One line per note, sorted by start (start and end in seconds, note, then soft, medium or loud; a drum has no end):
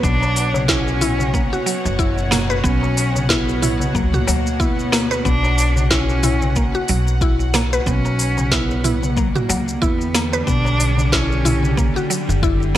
0.00 1.44 B1 loud
0.00 9.39 B2 medium
0.00 0.21 B3 medium
0.00 0.68 D4 loud
0.00 7.87 F#4 medium
0.00 8.70 C#5 medium
0.00 9.09 F#5 medium
0.00 kick loud
0.04 shaker soft
0.22 darbuka tek medium
0.22 shaker soft
0.36 open hi-hat medium
0.36 darbuka ka medium
0.36 shaker medium
0.54 darbuka ka medium
0.54 darbuka dum medium
0.54 shaker soft
0.68 1.62 C#4 loud
0.68 1.00 E4 loud
0.68 kick loud
0.68 snare medium
0.68 shaker soft
0.88 shaker soft
1.01 1.19 E4 medium
1.01 mid tom medium
1.01 open hi-hat medium
1.01 shaker medium
1.19 darbuka dum loud
1.19 shaker soft
1.34 1.52 A#3 medium
1.34 kick loud
1.34 shaker soft
1.53 1.66 F#4 medium
1.53 shaker soft
1.66 1.84 F#3 medium
1.66 open hi-hat medium
1.66 shaker medium
1.85 2.58 F#1 medium
1.85 shaker soft
1.99 2.30 E4 loud
1.99 kick loud
1.99 shaker soft
2.18 shaker soft
2.31 2.42 A#3 loud
2.31 snare medium
2.31 mid tom medium
2.31 open hi-hat loud
2.31 darbuka tek medium
2.31 shaker medium
2.50 2.63 B4 loud
2.50 shaker soft
2.64 3.89 B1 medium
2.64 2.82 B3 medium
2.64 3.26 C#4 loud
2.64 kick loud
2.64 shaker medium
2.83 darbuka tek medium
2.83 shaker soft
2.97 open hi-hat medium
2.97 darbuka ka medium
2.97 shaker medium
3.15 darbuka ka medium
3.15 darbuka dum medium
3.15 shaker soft
3.29 3.97 B3 loud
3.29 3.61 E4 loud
3.29 kick loud
3.29 snare medium
3.29 shaker soft
3.49 darbuka ka soft
3.49 shaker soft
3.62 3.80 E4 medium
3.62 mid tom medium
3.62 open hi-hat medium
3.62 shaker medium
3.80 darbuka dum medium
3.80 shaker soft
3.95 4.20 C#2 medium
3.95 4.16 F#3 medium
3.95 4.13 A#3 medium
3.95 kick loud
3.95 shaker soft
4.14 4.62 A#3 loud
4.14 4.27 F#4 medium
4.14 mid tom medium
4.14 shaker soft
4.27 5.19 D2 medium
4.27 4.45 F#3 medium
4.27 open hi-hat medium
4.27 darbuka tek medium
4.27 shaker medium
4.47 shaker soft
4.60 5.25 B3 loud
4.60 4.91 E4 medium
4.60 kick loud
4.60 shaker soft
4.79 shaker soft
4.92 5.03 A#3 loud
4.92 snare medium
4.92 open hi-hat medium
4.92 shaker medium
5.11 5.24 B4 loud
5.11 darbuka tek medium
5.11 shaker soft
5.25 6.66 B1 loud
5.25 5.43 B3 medium
5.25 5.87 D4 loud
5.25 kick loud
5.25 shaker soft
5.44 darbuka tek medium
5.44 shaker soft
5.58 open hi-hat medium
5.58 darbuka ka medium
5.58 shaker medium
5.76 darbuka ka medium
5.76 darbuka dum medium
5.76 shaker soft
5.90 6.85 C#4 loud
5.90 6.22 E4 loud
5.90 kick loud
5.90 snare medium
5.90 shaker soft
6.09 shaker soft
6.23 6.41 E4 medium
6.23 mid tom medium
6.23 open hi-hat medium
6.23 shaker medium
6.42 darbuka dum medium
6.42 shaker soft
6.56 6.74 A#3 medium
6.56 kick loud
6.56 shaker soft
6.74 6.88 F#4 medium
6.74 shaker soft
6.88 7.81 B1 medium
6.88 7.06 F#3 medium
6.88 open hi-hat medium
6.88 shaker medium
7.07 shaker soft
7.21 7.53 E4 loud
7.21 kick loud
7.21 shaker soft
7.40 shaker soft
7.54 7.65 A#3 loud
7.54 snare medium
7.54 mid tom medium
7.54 open hi-hat medium
7.54 darbuka tek medium
7.54 shaker medium
7.73 7.85 B4 loud
7.73 shaker soft
7.86 9.27 B1 medium
7.86 12.78 G3 medium
7.86 8.04 B3 medium
7.86 8.53 C#4 loud
7.86 kick loud
7.86 shaker soft
8.05 darbuka tek medium
8.05 shaker soft
8.19 12.78 D3 medium
8.19 open hi-hat medium
8.19 darbuka ka medium
8.19 shaker medium
8.37 darbuka ka medium
8.37 darbuka dum medium
8.37 shaker soft
8.51 9.18 B3 loud
8.51 8.83 E4 loud
8.51 kick medium
8.51 snare medium
8.51 shaker soft
8.70 darbuka ka soft
8.70 shaker soft
8.84 9.02 E4 medium
8.84 mid tom medium
8.84 open hi-hat medium
8.84 shaker medium
9.03 12.78 G4 medium
9.03 darbuka dum loud
9.03 shaker soft
9.16 9.36 F#3 medium
9.16 9.35 A#3 medium
9.16 kick loud
9.16 shaker soft
9.35 9.83 A#3 medium
9.35 9.49 F#4 medium
9.35 mid tom medium
9.35 shaker soft
9.49 9.74 C#2 medium
9.49 9.67 F#3 medium
9.49 open hi-hat medium
9.49 darbuka tek medium
9.49 shaker medium
9.68 shaker soft
9.81 10.41 E2 medium
9.81 10.46 B3 loud
9.81 10.13 E4 loud
9.81 kick loud
9.81 shaker soft
10.01 shaker soft
10.15 10.25 A#3 loud
10.15 snare medium
10.15 open hi-hat medium
10.15 shaker medium
10.33 10.46 B4 loud
10.33 darbuka tek medium
10.33 shaker soft
10.46 11.88 B1 medium
10.46 10.65 B3 medium
10.46 11.14 D4 loud
10.46 kick loud
10.46 shaker soft
10.65 darbuka tek medium
10.65 shaker soft
10.79 open hi-hat medium
10.79 darbuka ka medium
10.79 shaker medium
10.98 darbuka ka medium
10.98 darbuka dum medium
10.98 shaker soft
11.12 12.10 C#4 loud
11.12 11.44 E4 loud
11.12 kick medium
11.12 snare medium
11.12 shaker soft
11.32 shaker soft
11.45 11.63 E4 medium
11.45 mid tom medium
11.45 open hi-hat medium
11.45 shaker medium
11.63 darbuka dum loud
11.63 shaker soft
11.77 11.95 A#3 medium
11.77 kick loud
11.77 shaker soft
11.96 12.10 F#4 medium
11.96 shaker soft
12.10 12.28 F#3 medium
12.10 open hi-hat medium
12.10 shaker medium
12.29 12.78 F#1 medium
12.29 shaker soft
12.43 12.74 E4 loud
12.43 kick loud
12.43 shaker soft
12.62 shaker soft